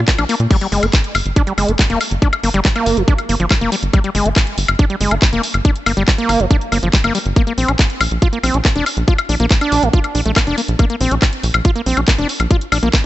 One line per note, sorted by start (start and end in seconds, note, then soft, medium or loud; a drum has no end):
0.08 0.11 A#3 medium
0.08 kick loud
0.08 clap loud
0.08 closed hi-hat loud
0.18 0.26 A#1 medium
0.18 0.25 D4 medium
0.18 closed hi-hat soft
0.18 high woodblock medium
0.29 0.35 A#3 loud
0.29 open hi-hat loud
0.40 0.47 A#2 medium
0.40 closed hi-hat medium
0.51 0.57 G3 loud
0.51 kick loud
0.51 closed hi-hat medium
0.51 crash medium
0.61 0.67 G3 medium
0.61 closed hi-hat medium
0.72 0.79 G1 medium
0.72 0.84 G#3 medium
0.72 open hi-hat loud
0.83 0.90 G1 medium
0.83 0.86 A#3 medium
0.83 closed hi-hat medium
0.83 high woodblock soft
0.93 kick loud
0.93 clap loud
0.93 closed hi-hat loud
1.04 closed hi-hat medium
1.15 1.22 G1 loud
1.15 open hi-hat loud
1.15 high woodblock medium
1.26 1.33 G1 medium
1.26 closed hi-hat medium
1.36 1.42 D4 loud
1.36 kick loud
1.36 closed hi-hat medium
1.47 1.53 G3 medium
1.47 closed hi-hat medium
1.58 1.65 G1 loud
1.58 1.70 G#3 medium
1.58 open hi-hat loud
1.58 high woodblock soft
1.68 1.76 G1 medium
1.68 1.72 A#3 medium
1.68 closed hi-hat medium
1.79 1.83 G3 loud
1.79 kick loud
1.79 clap loud
1.79 closed hi-hat loud
1.90 1.97 F1 medium
1.90 1.99 A#3 loud
1.90 closed hi-hat medium
2.01 open hi-hat loud
2.01 high woodblock soft
2.11 2.19 G1 medium
2.11 closed hi-hat medium
2.22 2.28 D4 loud
2.22 kick loud
2.22 closed hi-hat medium
2.33 closed hi-hat medium
2.33 high woodblock medium
2.43 2.51 G1 medium
2.43 2.50 A#3 medium
2.43 open hi-hat loud
2.54 2.61 G1 medium
2.54 2.60 G3 loud
2.54 closed hi-hat medium
2.65 2.69 G3 loud
2.65 kick loud
2.65 clap loud
2.65 closed hi-hat loud
2.76 2.99 A#3 loud
2.76 closed hi-hat medium
2.76 high woodblock soft
2.86 2.94 G1 loud
2.86 open hi-hat loud
2.97 3.04 G1 medium
2.97 3.03 F3 medium
2.97 closed hi-hat medium
3.08 3.14 D4 loud
3.08 kick loud
3.08 closed hi-hat medium
3.18 closed hi-hat medium
3.18 high woodblock soft
3.29 3.36 G1 loud
3.29 3.35 A#3 medium
3.29 open hi-hat loud
3.40 3.47 G1 medium
3.40 3.46 F3 medium
3.40 closed hi-hat medium
3.51 3.54 G3 loud
3.51 kick loud
3.51 clap loud
3.51 closed hi-hat loud
3.51 high woodblock medium
3.61 3.69 F1 medium
3.61 3.70 A#3 loud
3.61 closed hi-hat soft
3.72 3.76 G3 loud
3.72 open hi-hat loud
3.83 3.90 G1 medium
3.83 closed hi-hat medium
3.93 3.99 G3 loud
3.93 kick loud
3.93 closed hi-hat medium
3.93 high woodblock soft
4.04 4.10 G3 medium
4.04 closed hi-hat medium
4.15 4.22 G1 medium
4.15 4.27 G#3 medium
4.15 open hi-hat loud
4.26 4.33 G1 medium
4.26 4.29 A#3 medium
4.26 closed hi-hat medium
4.36 kick loud
4.36 clap loud
4.36 closed hi-hat medium
4.36 high woodblock soft
4.47 closed hi-hat medium
4.58 4.65 G1 medium
4.58 open hi-hat loud
4.68 4.76 G1 medium
4.68 closed hi-hat medium
4.68 high woodblock medium
4.79 4.85 D4 loud
4.79 kick loud
4.79 closed hi-hat medium
4.90 4.96 G3 medium
4.90 closed hi-hat medium
5.01 5.08 G1 loud
5.01 5.13 G#3 medium
5.01 open hi-hat loud
5.11 5.19 G1 medium
5.11 5.15 A#3 medium
5.11 closed hi-hat medium
5.11 high woodblock soft
5.22 5.26 G3 loud
5.22 kick loud
5.22 clap loud
5.22 closed hi-hat medium
5.33 5.40 F1 medium
5.33 5.42 A#3 loud
5.33 closed hi-hat soft
5.43 open hi-hat loud
5.54 5.61 G1 medium
5.54 closed hi-hat medium
5.54 high woodblock soft
5.65 5.71 D4 loud
5.65 kick loud
5.65 closed hi-hat medium
5.76 closed hi-hat medium
5.86 5.94 G1 medium
5.86 5.92 A#3 medium
5.86 open hi-hat loud
5.86 high woodblock medium
5.97 6.04 G1 medium
5.97 6.03 G3 loud
5.97 closed hi-hat medium
6.08 6.11 G3 loud
6.08 kick loud
6.08 clap loud
6.08 closed hi-hat medium
6.18 6.41 A#3 loud
6.18 closed hi-hat medium
6.29 6.36 G1 loud
6.29 open hi-hat loud
6.29 high woodblock soft
6.40 6.47 G1 medium
6.40 6.46 F3 medium
6.40 closed hi-hat medium
6.51 6.57 D4 loud
6.51 kick loud
6.51 closed hi-hat medium
6.61 closed hi-hat medium
6.72 6.79 G1 medium
6.72 6.78 A#3 medium
6.72 open hi-hat loud
6.72 high woodblock soft
6.83 6.90 G1 medium
6.83 6.89 F3 medium
6.83 closed hi-hat medium
6.93 6.97 G3 loud
6.93 kick loud
6.93 clap loud
6.93 closed hi-hat medium
7.04 7.11 G1 medium
7.04 7.13 A#3 loud
7.04 closed hi-hat soft
7.04 high woodblock medium
7.15 7.18 G3 loud
7.15 open hi-hat loud
7.26 7.33 G1 medium
7.26 closed hi-hat soft
7.36 7.42 A#3 loud
7.36 kick loud
7.36 closed hi-hat medium
7.47 7.53 A#3 medium
7.47 closed hi-hat medium
7.58 7.65 A#1 medium
7.58 7.70 C4 medium
7.58 open hi-hat loud
7.68 7.76 A#1 medium
7.68 7.72 D4 medium
7.68 closed hi-hat medium
7.68 high woodblock soft
7.79 kick loud
7.79 clap loud
7.79 closed hi-hat loud
7.90 closed hi-hat medium
8.01 8.08 A#1 loud
8.01 open hi-hat loud
8.01 high woodblock medium
8.11 8.19 A#1 medium
8.11 closed hi-hat medium
8.22 8.28 F4 loud
8.22 kick loud
8.22 closed hi-hat medium
8.33 8.39 A#3 medium
8.33 closed hi-hat medium
8.43 8.51 A#1 medium
8.43 8.56 C4 medium
8.43 open hi-hat loud
8.43 high woodblock soft
8.54 8.61 A#1 medium
8.54 8.58 D4 medium
8.54 closed hi-hat medium
8.65 8.68 A#3 loud
8.65 kick loud
8.65 clap loud
8.65 closed hi-hat medium
8.76 8.83 F1 medium
8.76 8.85 D4 loud
8.76 closed hi-hat soft
8.86 open hi-hat loud
8.86 high woodblock soft
8.97 9.04 A#1 medium
8.97 closed hi-hat soft
9.08 9.14 F4 loud
9.08 kick loud
9.08 closed hi-hat medium
9.18 closed hi-hat medium
9.18 high woodblock medium
9.29 9.36 A#1 loud
9.29 9.35 D4 medium
9.29 open hi-hat loud
9.40 9.47 A#1 medium
9.40 9.46 A#3 loud
9.40 closed hi-hat medium
9.51 9.54 A#3 loud
9.51 kick loud
9.51 clap loud
9.51 closed hi-hat loud
9.61 9.84 D4 loud
9.61 closed hi-hat medium
9.61 high woodblock soft
9.72 9.79 A#1 loud
9.72 open hi-hat loud
9.83 9.90 A#1 medium
9.83 9.89 A3 medium
9.83 closed hi-hat medium
9.93 10.00 F4 loud
9.93 kick loud
9.93 closed hi-hat medium
10.04 closed hi-hat medium
10.04 high woodblock soft
10.15 10.22 A#1 loud
10.15 10.21 D4 medium
10.15 open hi-hat loud
10.26 10.33 A#1 medium
10.26 10.32 A3 medium
10.26 closed hi-hat medium
10.36 10.40 A#3 loud
10.36 kick loud
10.36 clap loud
10.36 closed hi-hat loud
10.36 high woodblock medium
10.47 10.54 F1 medium
10.47 10.56 D4 loud
10.47 closed hi-hat medium
10.58 10.61 A#3 loud
10.58 open hi-hat loud
10.68 10.76 A#1 medium
10.68 closed hi-hat medium
10.79 10.85 A#3 loud
10.79 kick loud
10.79 closed hi-hat medium
10.79 high woodblock soft
10.90 10.96 A#3 medium
10.90 closed hi-hat medium
11.01 11.08 A#1 medium
11.01 11.13 C4 medium
11.01 open hi-hat loud
11.11 11.19 A#1 medium
11.11 11.15 D4 medium
11.11 closed hi-hat medium
11.22 kick loud
11.22 clap loud
11.22 closed hi-hat loud
11.22 high woodblock soft
11.33 closed hi-hat medium
11.43 11.51 A#1 loud
11.43 open hi-hat loud
11.54 11.61 A#1 medium
11.54 closed hi-hat medium
11.54 high woodblock medium
11.65 11.71 F4 loud
11.65 kick loud
11.65 closed hi-hat medium
11.76 11.82 A#3 medium
11.76 closed hi-hat medium
11.86 11.94 A#1 medium
11.86 11.99 C4 medium
11.86 open hi-hat loud
11.97 12.04 A#1 medium
11.97 12.01 D4 medium
11.97 closed hi-hat medium
11.97 high woodblock soft
12.08 12.11 A#3 loud
12.08 kick loud
12.08 clap loud
12.08 closed hi-hat loud
12.18 12.26 F1 medium
12.18 12.28 D4 loud
12.18 closed hi-hat medium
12.29 open hi-hat loud
12.40 12.47 A#1 medium
12.40 closed hi-hat medium
12.40 high woodblock soft
12.51 12.57 F4 loud
12.51 kick loud
12.51 closed hi-hat medium
12.61 closed hi-hat medium
12.72 12.79 A#1 medium
12.72 12.78 D4 medium
12.72 open hi-hat loud
12.72 high woodblock medium
12.83 12.90 A#1 medium
12.83 12.89 A#3 loud
12.83 closed hi-hat medium
12.93 12.97 A#3 loud
12.93 kick loud
12.93 clap loud
12.93 closed hi-hat loud